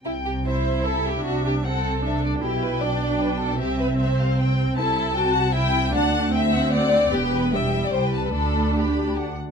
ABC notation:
X:1
M:3/4
L:1/16
Q:1/4=152
K:C
V:1 name="Violin section"
g4 e4 e4- | e4 ^f2 f2 e2 d2 | g12 | e4 e2 f2 g4 |
[K:G] a4 g2 f2 e4 | a4 g2 f2 f4 | g4 g4 g2 a2 | b4 b4 f2 z2 |]
V:2 name="Violin section"
E2 G2 c4 A2 G2 | ^F2 G2 A6 z2 | G2 B2 d4 B2 A2 | G2 B2 c6 z2 |
[K:G] A4 a4 g4 | f4 e4 d4 | G2 B2 e3 d c B2 A | A4 G4 z4 |]
V:3 name="Viola section"
z4 E8 | D4 C4 D4 | E4 D8 | C12 |
[K:G] E4 F4 E4 | D4 C8 | B,4 G,8 | D8- D2 z2 |]
V:4 name="Cello section" clef=bass
C,12 | C,12 | B,,12 | C,12 |
[K:G] C,12 | D,,12 | E,,8 C,,4 | D,,8- D,,2 z2 |]
V:5 name="Double bass section" clef=bass
C,,12 | C,,12 | B,,,12 | C,,12 |
[K:G] C,,12 | D,,12 | E,,,8 C,,4 | D,,8- D,,2 z2 |]